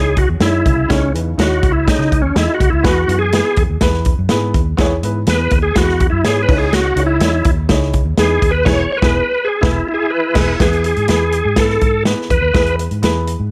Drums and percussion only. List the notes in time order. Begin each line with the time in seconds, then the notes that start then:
0.17 kick, closed hi-hat
0.40 snare, closed hi-hat
0.66 kick, closed hi-hat
0.90 kick, snare, closed hi-hat
1.15 closed hi-hat
1.39 snare, closed hi-hat
1.63 kick, closed hi-hat
1.88 kick, snare, closed hi-hat
2.00 snare
2.12 kick, closed hi-hat
2.36 snare, closed hi-hat
2.60 kick, closed hi-hat
2.85 kick, snare, closed hi-hat
3.09 closed hi-hat
3.33 snare, closed hi-hat
3.56 kick, closed hi-hat
3.81 kick, snare, closed hi-hat
3.93 snare
4.05 kick, closed hi-hat
4.29 snare, closed hi-hat
4.54 kick, closed hi-hat
4.78 kick, snare, closed hi-hat
5.03 closed hi-hat
5.27 snare, closed hi-hat
5.50 kick, closed hi-hat
5.76 kick, snare, closed hi-hat
5.89 snare
6.00 kick, closed hi-hat
6.25 snare, closed hi-hat
6.49 kick, crash
6.73 snare, closed hi-hat
6.97 closed hi-hat
7.20 snare, closed hi-hat
7.44 kick, closed hi-hat
7.69 kick, snare, closed hi-hat
7.82 snare
7.93 kick, closed hi-hat
8.18 snare, closed hi-hat
8.42 kick, closed hi-hat
8.66 kick, snare, crash
9.02 kick, snare
9.63 kick, snare
10.35 kick, snare, crash
10.60 kick, snare, closed hi-hat
10.73 closed hi-hat
10.84 closed hi-hat
10.96 closed hi-hat
11.08 snare, closed hi-hat
11.32 closed hi-hat
11.56 kick, snare, closed hi-hat
11.70 snare
11.81 kick, closed hi-hat
12.05 snare, closed hi-hat
12.30 kick, closed hi-hat
12.54 kick, snare, closed hi-hat
12.66 closed hi-hat
12.79 closed hi-hat
12.91 closed hi-hat
13.03 snare, closed hi-hat
13.27 closed hi-hat